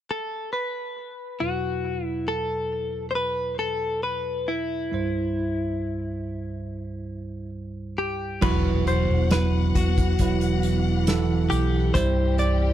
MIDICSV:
0, 0, Header, 1, 7, 480
1, 0, Start_track
1, 0, Key_signature, 1, "minor"
1, 0, Tempo, 878477
1, 765, Time_signature, 4, 2, 24, 8
1, 6957, End_track
2, 0, Start_track
2, 0, Title_t, "Clean electric guitar"
2, 0, Program_c, 0, 27
2, 58, Note_on_c, 0, 69, 59
2, 286, Note_off_c, 0, 69, 0
2, 288, Note_on_c, 0, 71, 52
2, 766, Note_on_c, 0, 66, 60
2, 781, Note_off_c, 0, 71, 0
2, 1122, Note_off_c, 0, 66, 0
2, 1122, Note_on_c, 0, 64, 60
2, 1246, Note_on_c, 0, 69, 60
2, 1264, Note_off_c, 0, 64, 0
2, 1670, Note_off_c, 0, 69, 0
2, 1698, Note_on_c, 0, 72, 40
2, 1721, Note_off_c, 0, 72, 0
2, 1723, Note_on_c, 0, 71, 65
2, 1950, Note_off_c, 0, 71, 0
2, 1961, Note_on_c, 0, 69, 63
2, 2201, Note_off_c, 0, 69, 0
2, 2203, Note_on_c, 0, 71, 54
2, 2448, Note_on_c, 0, 64, 55
2, 2451, Note_off_c, 0, 71, 0
2, 4094, Note_off_c, 0, 64, 0
2, 4361, Note_on_c, 0, 67, 55
2, 4603, Note_on_c, 0, 71, 84
2, 4610, Note_off_c, 0, 67, 0
2, 4828, Note_off_c, 0, 71, 0
2, 4850, Note_on_c, 0, 72, 70
2, 5073, Note_off_c, 0, 72, 0
2, 5093, Note_on_c, 0, 71, 78
2, 5329, Note_on_c, 0, 66, 61
2, 5339, Note_off_c, 0, 71, 0
2, 6283, Note_on_c, 0, 67, 76
2, 6319, Note_off_c, 0, 66, 0
2, 6522, Note_off_c, 0, 67, 0
2, 6524, Note_on_c, 0, 72, 92
2, 6748, Note_off_c, 0, 72, 0
2, 6771, Note_on_c, 0, 74, 82
2, 6957, Note_off_c, 0, 74, 0
2, 6957, End_track
3, 0, Start_track
3, 0, Title_t, "Tine electric piano"
3, 0, Program_c, 1, 4
3, 764, Note_on_c, 1, 54, 35
3, 772, Note_on_c, 1, 40, 37
3, 773, Note_on_c, 1, 47, 38
3, 773, Note_on_c, 1, 64, 33
3, 783, Note_on_c, 1, 71, 42
3, 860, Control_c, 1, 64, 127
3, 2663, Note_off_c, 1, 54, 0
3, 2667, Note_off_c, 1, 40, 0
3, 2667, Note_off_c, 1, 47, 0
3, 2667, Note_off_c, 1, 64, 0
3, 2672, Note_off_c, 1, 71, 0
3, 2686, Note_on_c, 1, 55, 45
3, 2691, Note_on_c, 1, 36, 46
3, 2693, Note_on_c, 1, 64, 45
3, 2694, Control_c, 1, 64, 0
3, 2694, Note_on_c, 1, 43, 50
3, 2700, Note_on_c, 1, 72, 56
3, 2799, Control_c, 1, 64, 127
3, 4580, Note_off_c, 1, 55, 0
3, 4583, Note_off_c, 1, 36, 0
3, 4584, Note_off_c, 1, 43, 0
3, 4584, Note_off_c, 1, 64, 0
3, 4587, Note_off_c, 1, 72, 0
3, 4597, Note_on_c, 1, 54, 82
3, 4599, Note_on_c, 1, 64, 83
3, 4602, Note_on_c, 1, 47, 57
3, 4603, Note_on_c, 1, 66, 101
3, 4608, Control_c, 1, 64, 0
3, 4710, Control_c, 1, 64, 127
3, 5060, Note_off_c, 1, 54, 0
3, 5062, Note_off_c, 1, 64, 0
3, 5063, Note_off_c, 1, 66, 0
3, 5085, Note_on_c, 1, 54, 63
3, 5090, Note_on_c, 1, 64, 59
3, 5095, Note_on_c, 1, 71, 72
3, 5307, Note_off_c, 1, 47, 0
3, 5544, Note_off_c, 1, 54, 0
3, 5547, Note_off_c, 1, 64, 0
3, 5549, Note_off_c, 1, 71, 0
3, 5573, Note_on_c, 1, 54, 74
3, 5578, Note_on_c, 1, 64, 64
3, 5582, Note_on_c, 1, 71, 69
3, 6028, Note_off_c, 1, 54, 0
3, 6030, Note_off_c, 1, 64, 0
3, 6032, Note_off_c, 1, 71, 0
3, 6053, Note_on_c, 1, 52, 80
3, 6053, Note_on_c, 1, 64, 77
3, 6058, Note_on_c, 1, 69, 86
3, 6507, Note_off_c, 1, 52, 0
3, 6507, Note_off_c, 1, 64, 0
3, 6509, Note_off_c, 1, 69, 0
3, 6528, Note_on_c, 1, 55, 92
3, 6530, Note_on_c, 1, 64, 83
3, 6534, Note_on_c, 1, 43, 62
3, 6535, Control_c, 1, 64, 0
3, 6536, Note_on_c, 1, 72, 98
3, 6622, Control_c, 1, 64, 127
3, 6957, Note_off_c, 1, 43, 0
3, 6957, Note_off_c, 1, 55, 0
3, 6957, Note_off_c, 1, 64, 0
3, 6957, Note_off_c, 1, 72, 0
3, 6957, End_track
4, 0, Start_track
4, 0, Title_t, "String section"
4, 0, Program_c, 2, 48
4, 4604, Note_on_c, 2, 47, 64
4, 4604, Note_on_c, 2, 78, 80
4, 4605, Note_on_c, 2, 52, 70
4, 6511, Note_off_c, 2, 47, 0
4, 6511, Note_off_c, 2, 78, 0
4, 6530, Note_on_c, 2, 60, 69
4, 6530, Note_on_c, 2, 67, 80
4, 6531, Note_on_c, 2, 55, 66
4, 6957, Note_off_c, 2, 52, 0
4, 6957, Note_off_c, 2, 55, 0
4, 6957, Note_off_c, 2, 60, 0
4, 6957, Note_off_c, 2, 67, 0
4, 6957, End_track
5, 0, Start_track
5, 0, Title_t, "Fingered electric bass"
5, 0, Program_c, 3, 33
5, 4604, Note_on_c, 3, 28, 89
5, 4945, Note_off_c, 3, 28, 0
5, 4970, Note_on_c, 3, 28, 74
5, 5309, Note_off_c, 3, 28, 0
5, 5331, Note_on_c, 3, 28, 73
5, 5553, Note_off_c, 3, 28, 0
5, 5570, Note_on_c, 3, 28, 85
5, 6269, Note_off_c, 3, 28, 0
5, 6290, Note_on_c, 3, 35, 75
5, 6512, Note_off_c, 3, 35, 0
5, 6529, Note_on_c, 3, 36, 83
5, 6957, Note_off_c, 3, 36, 0
5, 6957, End_track
6, 0, Start_track
6, 0, Title_t, "Impact"
6, 0, Program_c, 4, 103
6, 4601, Note_on_c, 4, 60, 72
6, 6529, Note_off_c, 4, 60, 0
6, 6957, End_track
7, 0, Start_track
7, 0, Title_t, "Drums"
7, 4602, Note_on_c, 9, 49, 83
7, 4603, Note_on_c, 9, 36, 87
7, 4656, Note_off_c, 9, 49, 0
7, 4658, Note_off_c, 9, 36, 0
7, 4847, Note_on_c, 9, 42, 63
7, 4901, Note_off_c, 9, 42, 0
7, 5085, Note_on_c, 9, 42, 76
7, 5089, Note_on_c, 9, 38, 99
7, 5139, Note_off_c, 9, 42, 0
7, 5143, Note_off_c, 9, 38, 0
7, 5329, Note_on_c, 9, 36, 85
7, 5329, Note_on_c, 9, 42, 64
7, 5384, Note_off_c, 9, 36, 0
7, 5384, Note_off_c, 9, 42, 0
7, 5450, Note_on_c, 9, 42, 50
7, 5451, Note_on_c, 9, 36, 93
7, 5505, Note_off_c, 9, 42, 0
7, 5506, Note_off_c, 9, 36, 0
7, 5566, Note_on_c, 9, 42, 75
7, 5571, Note_on_c, 9, 36, 85
7, 5621, Note_off_c, 9, 42, 0
7, 5625, Note_off_c, 9, 36, 0
7, 5688, Note_on_c, 9, 42, 51
7, 5743, Note_off_c, 9, 42, 0
7, 5809, Note_on_c, 9, 42, 66
7, 5863, Note_off_c, 9, 42, 0
7, 6048, Note_on_c, 9, 42, 86
7, 6054, Note_on_c, 9, 38, 101
7, 6103, Note_off_c, 9, 42, 0
7, 6109, Note_off_c, 9, 38, 0
7, 6291, Note_on_c, 9, 42, 62
7, 6346, Note_off_c, 9, 42, 0
7, 6529, Note_on_c, 9, 42, 84
7, 6530, Note_on_c, 9, 36, 89
7, 6584, Note_off_c, 9, 42, 0
7, 6585, Note_off_c, 9, 36, 0
7, 6766, Note_on_c, 9, 42, 54
7, 6820, Note_off_c, 9, 42, 0
7, 6957, End_track
0, 0, End_of_file